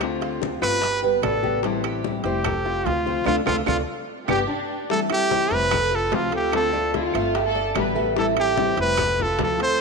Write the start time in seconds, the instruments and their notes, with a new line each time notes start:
Already playing: upright bass D2, cuban tres C5
0.00 nylon-string guitar D3 A3 C4 F4, high bongo, high timbale, claves
0.21 cuban tres F4, high bongo, high conga, high timbale
0.41 nylon-string guitar D3 A3 C4 F4, high bongo, high conga, low timbale
0.61 upright bass G1, nylon-string guitar A3 C4 F4, cuban tres G4, trumpet B4, high conga, high timbale, claves
0.82 muted nylon-string guitar stroke, high bongo, high conga, high timbale
1.02 nylon-string guitar G3 B3 G4, cuban tres B3, high bongo, high conga
1.22 upright bass A1, cuban tres D4, trumpet A4, high bongo, low bongo, high conga, high timbale, low timbale, claves
1.43 nylon-string guitar G3 B3 G4, high bongo, high conga
1.63 nylon-string guitar E3 G3 C4 E4, cuban tres C4, high bongo, high conga, high timbale
1.84 cuban tres G4, high bongo, high conga, high timbale, claves
2.04 nylon-string guitar E3 G3 C4 E4, high bongo, high conga, low timbale
2.24 upright bass F1, nylon-string guitar G3 C4 E4, cuban tres C4, trumpet G4, high conga, high timbale
2.44 cuban tres A4, muted nylon-string guitar stroke, high bongo, high conga, low conga, high timbale, claves
2.65 nylon-string guitar A3 C4 F4, cuban tres F4, high bongo, high conga
2.85 upright bass D2, trumpet F4, high bongo, low bongo, high conga, high timbale, low timbale
3.06 nylon-string guitar F3 A3 C4 F4, cuban tres C5, high bongo, high conga
3.25 upright bass D2, nylon-string guitar A3 C4 D4, cuban tres D4 F4 A4, trumpet F4, high bongo, high conga, high timbale, claves
3.46 upright bass D2, nylon-string guitar A3 C4 D4, cuban tres D4 F4 A4, trumpet F4, high bongo, high conga, high timbale, claves
3.66 upright bass D2, nylon-string guitar A3 C4 D4, cuban tres D4 F4 A4, trumpet F4, high bongo, high conga, high timbale, claves
4.28 upright bass G1, nylon-string guitar A3 B3 D4, cuban tres B3 D4 G4, violin section G4, trumpet G4, high bongo, high conga, high timbale, claves
4.48 violin section D4
4.89 nylon-string guitar E3 G3 C4 E4, cuban tres A3, trumpet A4, high bongo, high conga
5.10 nylon-string guitar G3 C4 E4, trumpet G4, high bongo, high conga, high timbale, claves
5.30 nylon-string guitar E3 G3 C4 E4, cuban tres C4, high bongo, high conga, low timbale
5.50 upright bass F1, nylon-string guitar G3 C4 E4, trumpet B4, high bongo, high conga, high timbale
5.71 cuban tres A4, muted nylon-string guitar stroke, high bongo, high conga, low conga, high timbale, claves
5.92 cuban tres F4, high bongo, high conga
5.96 trumpet A4
6.12 upright bass D2, nylon-string guitar C3 F3 A3 C4 F4, trumpet F4, high bongo, low bongo, high conga, high timbale, low timbale
6.32 nylon-string guitar A3 C4 F4, trumpet G4, cuban tres A4, high timbale
6.52 nylon-string guitar D3 A3 C4 F4, trumpet A4, high bongo, high conga, high timbale, claves
6.73 nylon-string guitar A3 C4 F4, cuban tres D4, high bongo, high conga
6.93 nylon-string guitar D3 A3 C4 F4, violin section E4, high bongo, high conga, high timbale, low timbale
7.03 violin section F4
7.14 upright bass G1, cuban tres A3, nylon-string guitar A3 C4 F4, high conga, high timbale, claves
7.35 violin section G4, muted nylon-string guitar stroke, high bongo, high conga, high timbale
7.46 violin section A4
7.55 cuban tres D4, high bongo, high conga
7.75 upright bass A1, nylon-string guitar D3 G3 B3 G4, violin section B4, high bongo, low bongo, high conga, high timbale, low timbale, claves
7.95 nylon-string guitar G3 B3 G4, cuban tres A3, high bongo, high conga
8.16 nylon-string guitar E3 G3 C4 E4, cuban tres A3, trumpet A4, high bongo
8.37 nylon-string guitar G3 C4 E4, trumpet G4, high bongo, high conga, high timbale, claves
8.57 nylon-string guitar E3 G3 C4 E4, cuban tres C4, high bongo, high conga, low timbale
8.77 upright bass F1, nylon-string guitar G3 C4 E4, high bongo, high conga, high timbale
8.81 trumpet B4
8.97 cuban tres A4, muted nylon-string guitar stroke, high bongo, high conga, low conga, high timbale, claves
9.19 cuban tres F4, trumpet A4, high bongo, high conga, low conga
9.39 upright bass D2, nylon-string guitar C3 F3 A3 C4 F4, high bongo, low bongo, high conga, high timbale, low timbale
9.43 trumpet A4
9.59 nylon-string guitar A3 C4 F4, cuban tres A4, high conga, high timbale
9.63 trumpet C5